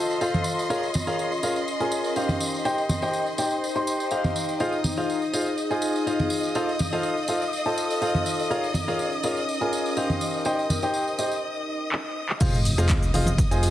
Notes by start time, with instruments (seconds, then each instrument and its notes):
Already playing: grand piano F4 A4 C5 D#5 A5, ambient pad F4 D#5 A5, violin section D#5 C6, downlifter
0.11 tambourine
0.21 grand piano F4 A4 C5 D#5 F5, tambourine
0.34 tambourine, high conga
0.44 tambourine
0.59 tambourine
0.70 ambient pad C#4, grand piano F4 G#4 A#4 C#5 F5, tambourine
0.83 tambourine
0.94 tambourine, high conga
1.03 grand piano F4 G#4 A#4 C#5 F5, ambient pad A#4, tambourine
1.19 tambourine
1.32 ambient pad G#5, tambourine
1.43 grand piano F4 G#4 A#4 C#5 F5, tambourine
1.56 tambourine
1.68 tambourine
1.80 grand piano F4 G#4 A#4 C#5 G#5, tambourine
1.92 tambourine
2.04 tambourine
2.16 grand piano D#4 G4 C5 D#5 F5, tambourine
2.29 tambourine, high conga
2.41 ambient pad D#4, tambourine
2.54 tambourine
2.65 grand piano D#4 G4 C5 D#5 G5, tambourine
2.74 ambient pad C5
2.78 tambourine
2.89 tambourine, high conga
3.02 grand piano D#4 G4 C5 D#5 G5, tambourine
3.09 ambient pad G5
3.13 tambourine
3.26 tambourine
3.38 grand piano D#4 G4 C5 D#5 G5, tambourine
3.51 tambourine
3.64 tambourine
3.76 grand piano D#4 G4 C5 D#5 C6, tambourine
3.87 tambourine
4.00 tambourine
4.11 grand piano D#4 G4 C5 D#5 F5, tambourine
4.24 tambourine, high conga
4.36 tambourine
4.49 tambourine
4.60 grand piano F4 G#4 C5 D#5 F5, violin section D#5 D#6, tambourine
4.72 tambourine
4.84 tambourine, high conga
4.94 grand piano F4 G#4 C5 D#5 F5, ambient pad G#4, tambourine
5.10 tambourine
5.21 ambient pad F5, tambourine
5.33 grand piano F4 G#4 C5 D#5 F5, tambourine
5.46 tambourine
5.58 tambourine
5.71 grand piano F4 G#4 C5 D#5 G#5, tambourine
5.82 tambourine
5.96 tambourine
6.07 grand piano F4 G#4 C5 D#5 F5, tambourine
6.19 tambourine, high conga
6.30 tambourine
6.43 tambourine
6.55 grand piano F4 A4 C5 D#5 F5, tambourine
6.69 ambient pad A4, tambourine
6.79 tambourine, high conga
6.93 grand piano F4 A4 C5 D#5 F5, tambourine
7.03 tambourine
7.17 tambourine
7.28 grand piano F4 A4 C5 D#5 F5, tambourine
7.42 tambourine
7.53 tambourine
7.65 grand piano F4 A4 C5 D#5 A5, tambourine
7.78 tambourine
7.90 tambourine
8.02 grand piano F4 A4 C5 D#5 F5, tambourine
8.15 tambourine, high conga
8.26 tambourine
8.39 tambourine
8.50 ambient pad C#4, grand piano F4 G#4 A#4 C#5 F5, tambourine
8.64 tambourine
8.74 tambourine, high conga
8.88 grand piano F4 G#4 A#4 C#5 F5, tambourine
8.94 ambient pad A#4
8.99 tambourine
9.06 ambient pad G#5
9.12 tambourine
9.23 grand piano F4 G#4 A#4 C#5 F5, tambourine
9.37 tambourine
9.49 tambourine
9.61 grand piano F4 G#4 A#4 C#5 G#5, tambourine
9.73 tambourine
9.86 tambourine
9.97 grand piano D#4 G4 C5 D#5 F5, tambourine
10.10 tambourine, high conga
10.21 ambient pad D#4, tambourine
10.34 tambourine
10.45 grand piano D#4 G4 C5 D#5 G5, tambourine
10.58 ambient pad C5, tambourine
10.70 tambourine, high conga
10.82 grand piano D#4 G4 C5 D#5 G5, tambourine
10.94 tambourine
11.08 tambourine
11.19 grand piano D#4 G4 C5 D#5 G5, tambourine
11.31 tambourine
11.92 clap
12.29 clap
12.40 analog synth bass F1, ambient pad F4, grand piano F4 G#4 C5 D#5 F5, violin section D#5 D#6, kick, closed hi-hat, crash, tambourine, sub drop, cabasa
12.54 ambient pad D#5, tambourine, cabasa
12.65 open hi-hat, tambourine
12.78 analog synth bass F1, grand piano F4 G#4 C5 D#5 F5, cross-stick, closed hi-hat, tambourine, cabasa
12.89 kick, clap, closed hi-hat, tambourine, high conga, cabasa
13.03 closed hi-hat, tambourine, cabasa
13.14 analog synth bass F1, grand piano F4 G#4 C5 D#5 F5, ambient pad G#5, open hi-hat, tambourine, high conga
13.26 closed hi-hat, tambourine, high conga, cabasa
13.38 kick, closed hi-hat, tambourine, cabasa
13.51 analog synth bass F1, grand piano F4 G#4 C5 D#5 G#5, closed hi-hat, tambourine, cabasa
13.63 open hi-hat, tambourine